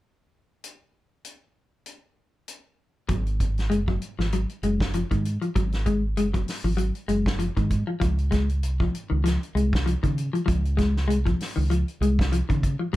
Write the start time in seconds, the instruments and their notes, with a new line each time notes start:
0.64 closed hi-hat
1.25 closed hi-hat
1.86 closed hi-hat
2.48 closed hi-hat
3.09 fingered electric bass G#1, clean electric guitar F#3, kick, closed hi-hat
3.27 closed hi-hat
3.40 kick, closed hi-hat
3.58 snare, closed hi-hat
3.70 fingered electric bass F#1, clean electric guitar G#3, closed hi-hat
3.88 clean electric guitar F#3, kick
4.02 closed hi-hat
4.19 fingered electric bass G#1, clean electric guitar F3, snare
4.32 clean electric guitar F#3, closed hi-hat
4.49 closed hi-hat
4.63 fingered electric bass F#1, clean electric guitar G#3, closed hi-hat
4.80 kick, snare
4.94 clean electric guitar F3, closed hi-hat
5.11 fingered electric bass G#2, clean electric guitar D#3, kick, closed hi-hat
5.25 closed hi-hat
5.42 clean electric guitar F3, closed hi-hat
5.55 fingered electric bass G#1, clean electric guitar F#3, kick, closed hi-hat
5.72 snare, closed hi-hat
5.86 clean electric guitar G#3, kick, closed hi-hat
6.17 fingered electric bass F#1, clean electric guitar G#3, closed hi-hat
6.33 clean electric guitar F#3, kick, closed hi-hat
6.48 snare, open hi-hat
6.64 fingered electric bass G#1, clean electric guitar F3
6.77 clean electric guitar F#3, closed hi-hat
6.95 closed hi-hat
7.08 fingered electric bass F#1, clean electric guitar G#3, closed hi-hat
7.26 kick, snare
7.39 clean electric guitar F3, closed hi-hat
7.57 fingered electric bass G#2, clean electric guitar D#3, kick, closed hi-hat
7.70 kick, closed hi-hat
7.87 clean electric guitar F3
8.00 fingered electric bass C#2, clean electric guitar F3, kick, closed hi-hat
8.18 closed hi-hat
8.31 clean electric guitar G#3, kick, snare, closed hi-hat
8.49 closed hi-hat
8.63 fingered electric bass C2, closed hi-hat
8.80 clean electric guitar F3, kick
8.95 closed hi-hat
9.10 fingered electric bass C#2, clean electric guitar D#3
9.24 clean electric guitar F3, snare, closed hi-hat
9.43 closed hi-hat
9.55 fingered electric bass C2, clean electric guitar G#3, closed hi-hat
9.73 kick, snare
9.86 clean electric guitar F3, closed hi-hat
10.03 fingered electric bass C#3, clean electric guitar D#3, kick, closed hi-hat
10.18 closed hi-hat
10.33 clean electric guitar F3, closed hi-hat
10.46 fingered electric bass C#2, clean electric guitar F3, kick, closed hi-hat
10.65 closed hi-hat
10.77 clean electric guitar G#3, kick, snare, closed hi-hat
10.97 snare
11.08 fingered electric bass C2, clean electric guitar G#3, closed hi-hat
11.26 clean electric guitar F3, kick, closed hi-hat
11.40 snare, open hi-hat
11.56 fingered electric bass C#2, clean electric guitar D#3
11.70 clean electric guitar F3, closed hi-hat
11.88 closed hi-hat
12.01 fingered electric bass C2, clean electric guitar G#3, closed hi-hat
12.19 kick, snare
12.32 clean electric guitar F3, closed hi-hat
12.49 fingered electric bass C#3, clean electric guitar D#3, kick, closed hi-hat
12.63 kick, closed hi-hat
12.79 clean electric guitar F3
12.93 clean electric guitar F#3